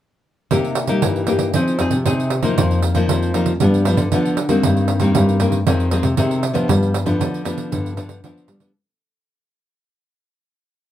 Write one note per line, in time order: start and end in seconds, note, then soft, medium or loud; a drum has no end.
0.51 1.00 C3 medium
0.51 0.73 C3 medium
0.51 0.86 A#3 medium
0.51 0.86 D#4 medium
0.51 0.86 G4 medium
0.51 pandeiro medium
0.65 pandeiro soft
0.75 pandeiro medium
0.87 1.00 G3 medium
0.87 1.24 A#3 medium
0.87 1.24 D#4 medium
0.87 1.24 G4 medium
0.87 pandeiro medium
1.02 1.52 G2 medium
1.02 1.47 E3 medium
1.02 pandeiro medium
1.16 pandeiro soft
1.27 1.52 A#3 medium
1.27 1.52 D#4 medium
1.27 1.52 G4 medium
1.27 pandeiro medium
1.39 pandeiro medium
1.54 2.03 F3 medium
1.54 1.88 F3 medium
1.54 1.76 C4 medium
1.54 1.77 D#4 medium
1.54 1.77 G#4 medium
1.54 pandeiro medium
1.68 pandeiro soft
1.79 1.95 C4 medium
1.79 1.95 D#4 medium
1.79 1.96 G#4 medium
1.79 pandeiro medium
1.91 2.03 C3 medium
1.91 pandeiro soft
2.05 2.55 C3 medium
2.05 2.39 C3 medium
2.05 2.30 C4 medium
2.05 2.30 D#4 medium
2.05 2.30 G#4 medium
2.05 pandeiro medium
2.20 pandeiro soft
2.30 pandeiro medium
2.43 2.55 F3 medium
2.43 2.91 F3 medium
2.43 2.92 A#3 medium
2.43 2.92 D#4 medium
2.43 pandeiro medium
2.57 3.07 F2 medium
2.57 2.79 F3 medium
2.57 pandeiro medium
2.71 pandeiro soft
2.82 pandeiro medium
2.94 3.06 F3 medium
2.94 3.30 F3 medium
2.94 3.30 A#3 medium
2.94 3.31 D#4 medium
2.94 pandeiro medium
3.09 3.58 F2 medium
3.09 3.53 F3 medium
3.09 pandeiro medium
3.22 pandeiro soft
3.34 3.51 F3 medium
3.34 3.51 A#3 soft
3.34 3.52 D#4 medium
3.34 pandeiro medium
3.46 pandeiro medium
3.60 4.10 G2 medium
3.60 3.83 F3 medium
3.60 3.93 G3 medium
3.60 3.83 B3 medium
3.60 3.83 D4 medium
3.60 pandeiro medium
3.74 pandeiro soft
3.85 4.02 F3 medium
3.85 4.02 B3 medium
3.85 4.02 D4 medium
3.85 pandeiro medium
3.97 4.09 D3 medium
3.97 pandeiro medium
4.12 4.45 D3 medium
4.12 4.61 D3 medium
4.12 4.37 F3 medium
4.12 4.37 B3 medium
4.12 4.37 D4 medium
4.12 pandeiro medium
4.25 pandeiro soft
4.37 pandeiro medium
4.49 4.97 D#3 medium
4.49 4.61 G3 medium
4.49 4.98 A#3 medium
4.49 4.98 C4 medium
4.49 pandeiro medium
4.63 5.13 G2 medium
4.63 4.86 G3 medium
4.63 pandeiro medium
4.77 pandeiro soft
4.88 pandeiro medium
5.00 5.36 D#3 medium
5.00 5.12 G3 medium
5.00 5.36 A#3 medium
5.00 5.36 C4 medium
5.00 pandeiro medium
5.15 5.64 G2 medium
5.15 5.59 G3 medium
5.15 pandeiro medium
5.29 pandeiro soft
5.40 5.57 D#3 soft
5.40 5.57 A#3 medium
5.40 5.58 C4 medium
5.40 pandeiro medium
5.52 pandeiro soft
5.66 6.16 F2 medium
5.66 5.88 D#3 medium
5.66 5.99 F3 medium
5.66 5.88 G#3 medium
5.66 5.89 C4 medium
5.66 pandeiro medium
5.80 pandeiro soft
5.91 6.07 D#3 soft
5.91 6.07 G#3 medium
5.91 6.07 C4 medium
5.91 pandeiro medium
6.03 6.15 C3 medium
6.03 pandeiro medium
6.17 6.67 C3 medium
6.17 6.51 C3 medium
6.17 6.42 D#3 medium
6.17 6.42 G#3 medium
6.17 6.42 C4 medium
6.17 pandeiro medium
6.31 pandeiro soft
6.43 pandeiro medium
6.53 7.02 F3 medium
6.53 6.66 F3 medium
6.53 7.03 B3 medium
6.53 7.03 D4 medium
6.53 pandeiro medium
6.68 7.17 G2 medium
6.68 6.91 G3 medium
6.68 pandeiro medium
6.83 pandeiro soft
6.94 pandeiro medium
7.06 7.18 D3 medium
7.06 7.41 F3 medium
7.06 7.41 B3 medium
7.06 7.41 D4 medium
7.06 pandeiro medium
7.19 7.69 D3 medium
7.19 7.64 D3 medium
7.19 pandeiro medium
7.34 pandeiro soft
7.45 7.93 F3 medium
7.45 7.93 B3 medium
7.45 7.94 D4 medium
7.45 pandeiro medium
7.58 pandeiro medium
7.72 8.21 G2 medium
7.72 7.94 D3 medium
7.72 pandeiro medium
7.86 pandeiro soft
7.97 8.20 D3 medium
7.97 8.19 F3 medium
7.97 8.19 B3 soft
7.97 8.19 D4 medium
7.97 pandeiro medium
8.09 pandeiro medium
8.24 8.73 D3 medium
8.24 8.47 F3 medium
8.24 8.58 F3 medium
8.24 8.59 B3 medium
8.24 8.59 D4 medium
8.24 pandeiro medium
8.37 pandeiro soft
8.48 8.72 G3 medium
8.48 pandeiro medium
8.60 8.70 F3 medium
8.60 8.70 B3 medium
8.60 8.71 D4 medium
8.60 pandeiro medium